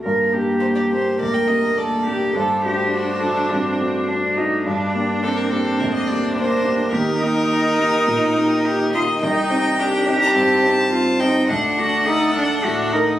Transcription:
0.03 grand piano G2, viola A#3, cello A#4
0.33 grand piano A#3 D4 G4, cello G4
0.60 violin C5
0.75 violin D5
0.91 grand piano A#3 D4 G4, violin C5
1.19 grand piano D2, viola A#3, cello A#4, violin D5
1.34 violin G5
1.48 grand piano A#3 D4 G4, violin D#5
1.77 viola A#3, cello A4, violin D5
2.07 grand piano A#3 D4 G4, cello G4
2.35 grand piano G2, viola D4, cello A4, violin C5
2.65 grand piano A3 D4 F#4, cello G4
2.93 cello F#4
3.23 grand piano A3 D4 F#4, cello A4
3.51 grand piano G2, cello C4
3.80 grand piano A3 D4 F#4
4.09 cello D4
4.37 grand piano A3 D4 F#4, cello D#4
4.65 grand piano G2, viola D4, cello D4
4.94 grand piano A#3 D4 G4
5.23 cello C4, violin A4
5.37 violin A#4
5.50 grand piano A#3 D4 G4, violin A4
5.79 grand piano D2, viola D4, violin A#4
5.93 violin D#5
6.07 grand piano A#3 D4 G4, violin D5
6.34 cello A#3, violin C5
6.64 grand piano A#3 D4 G4
6.92 grand piano D#2, viola D#4, cello G4, violin A#4
7.21 grand piano A#3 D#4 G4, cello D#4
7.79 grand piano A#3 D#4 G4
8.07 grand piano A#2
8.37 grand piano A#3 D#4 G4
8.65 cello G4
8.93 grand piano A#3 D#4 G4, cello F4, violin D#5
9.21 grand piano C2, viola D#4, cello D#4, violin G5
9.50 grand piano C4 D#4 G4
9.79 viola D4, cello G4
10.07 grand piano C4 D#4 G4, cello G4
10.22 violin A#5
10.35 grand piano G2, viola C4, violin A5
10.63 grand piano C4 D#4 G4
10.92 viola C4, cello F4
11.20 grand piano C4 D#4 G4, cello D#4, violin G5
11.48 grand piano D2, viola D4, cello D4, violin F#5
11.78 grand piano A3 D4, cello F#4
12.06 viola D#4, cello A4
12.35 grand piano A3 D4, viola D4
12.64 grand piano A2, viola D4, cello F#4
12.92 grand piano A3 D4, viola D#4, cello A#4

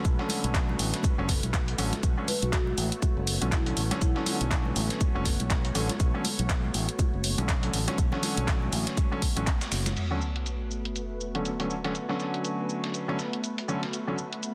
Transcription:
Already playing: string machine A3 B3 F#4 B4
0.05 fingered electric bass B1, kick, closed hi-hat, shaker
0.18 felt piano D3 F#3 A3 C#4, snare
0.29 snare, open hi-hat, high conga, shaker
0.44 fingered electric bass B1, closed hi-hat
0.54 kick, snare, clap, closed hi-hat, shaker
0.69 high conga
0.79 fingered electric bass A1, open hi-hat, shaker
0.94 snare, closed hi-hat
1.03 kick, closed hi-hat, high conga, shaker
1.18 fingered electric bass F#1, felt piano D3 F#3 A3 C#4
1.29 kick, snare, open hi-hat, shaker
1.43 fingered electric bass B1, closed hi-hat, high conga
1.54 kick, snare, clap, closed hi-hat, shaker
1.68 closed hi-hat
1.78 fingered electric bass A1, felt piano D3 F#3 A3 C#4, open hi-hat, shaker
1.93 snare, closed hi-hat, high conga
2.03 fingered electric bass B1, string machine C#5, kick, closed hi-hat, shaker
2.17 felt piano D3 F#3 A3 C#4
2.28 marimba B4, open hi-hat, high conga, shaker
2.42 fingered electric bass B1, marimba F#4, closed hi-hat
2.53 marimba F#4, kick, snare, clap, closed hi-hat, shaker
2.67 high conga
2.78 fingered electric bass A1, open hi-hat, shaker
2.92 closed hi-hat
3.02 kick, closed hi-hat, high conga, shaker
3.17 fingered electric bass F#1
3.27 open hi-hat, shaker
3.41 fingered electric bass B1, felt piano D3 F#3 A3 C#4, closed hi-hat, high conga
3.52 marimba E4, kick, snare, clap, closed hi-hat, shaker
3.66 felt piano D3 F#3 A3 C#4, closed hi-hat
3.77 fingered electric bass A1, open hi-hat, shaker
3.91 felt piano D3 F#3 A3 C#4, snare, closed hi-hat, high conga
4.02 fingered electric bass B1, marimba E4, kick, closed hi-hat, shaker
4.15 felt piano D3 F#3 A3 C#4, snare
4.26 snare, open hi-hat, high conga, shaker
4.41 fingered electric bass B1, closed hi-hat
4.51 kick, snare, clap, closed hi-hat, shaker
4.65 high conga
4.76 fingered electric bass A1, open hi-hat, shaker
4.90 snare, closed hi-hat
5.00 kick, closed hi-hat, high conga, shaker
5.15 fingered electric bass F#1, felt piano D3 F#3 A3 C#4
5.25 kick, snare, open hi-hat, shaker
5.40 fingered electric bass B1, closed hi-hat, high conga
5.50 kick, snare, clap, closed hi-hat, shaker
5.65 closed hi-hat
5.75 fingered electric bass A1, felt piano D3 F#3 A3 C#4, open hi-hat, shaker
5.89 snare, closed hi-hat, high conga
6.00 fingered electric bass B1, kick, closed hi-hat, shaker
6.14 felt piano D3 F#3 A3 C#4
6.24 open hi-hat, high conga, shaker
6.39 fingered electric bass B1, closed hi-hat
6.49 kick, snare, clap, closed hi-hat, shaker
6.64 high conga
6.74 fingered electric bass A1, open hi-hat, shaker
6.89 closed hi-hat
6.99 kick, closed hi-hat, high conga, shaker
7.13 fingered electric bass F#1
7.24 open hi-hat, shaker
7.38 fingered electric bass B1, felt piano D3 F#3 A3 C#4, closed hi-hat, high conga
7.49 kick, snare, clap, closed hi-hat, shaker
7.63 felt piano D3 F#3 A3 C#4, closed hi-hat
7.73 fingered electric bass A1, open hi-hat, shaker
7.87 felt piano D3 F#3 A3 C#4, snare, closed hi-hat, high conga
7.98 fingered electric bass B1, kick, closed hi-hat, shaker
8.12 felt piano D3 F#3 A3 C#4, snare, low conga
8.23 snare, open hi-hat, high conga, shaker
8.37 fingered electric bass B1, closed hi-hat
8.48 kick, snare, clap, closed hi-hat, shaker
8.62 high conga
8.73 fingered electric bass A1, open hi-hat, shaker
8.87 snare, closed hi-hat
8.97 kick, closed hi-hat, high conga, shaker
9.11 felt piano D3 F#3 A3 C#4
9.22 kick, open hi-hat
9.36 fingered electric bass A1, felt piano D3 F#3 A3 C#4, closed hi-hat, high conga
9.47 kick, snare, clap, closed hi-hat, shaker
9.61 snare, shaker
9.72 fingered electric bass F#1, snare, open hi-hat, shaker
9.86 snare, closed hi-hat, high conga, shaker
9.97 string machine A3 B3 F#4 B4, closed hi-hat, crash, sub drop, shaker
10.11 felt piano D3 F#3 A3 C#4
10.21 shaker
10.36 closed hi-hat
10.46 closed hi-hat, shaker
10.71 shaker
10.85 closed hi-hat
10.96 closed hi-hat, shaker
11.21 shaker
11.35 felt piano D3 F#3 A3 C#4, closed hi-hat
11.45 closed hi-hat, shaker
11.59 felt piano D3 F#3 A3 C#4, closed hi-hat
11.70 shaker
11.84 felt piano D3 F#3 A3 C#4, snare, closed hi-hat
11.95 closed hi-hat, shaker
12.08 felt piano D3 F#3 A3 C#4, snare
12.20 snare, shaker
12.34 closed hi-hat
12.45 closed hi-hat, shaker
12.69 shaker
12.84 snare, closed hi-hat
12.94 closed hi-hat, shaker
13.08 felt piano D3 F#3 A3 C#4
13.19 snare, shaker
13.33 closed hi-hat
13.44 closed hi-hat, shaker
13.58 closed hi-hat
13.68 felt piano D3 F#3 A3 C#4, shaker
13.83 snare, closed hi-hat
13.93 closed hi-hat, shaker
14.07 felt piano D3 F#3 A3 C#4
14.18 shaker
14.33 closed hi-hat
14.43 closed hi-hat, shaker

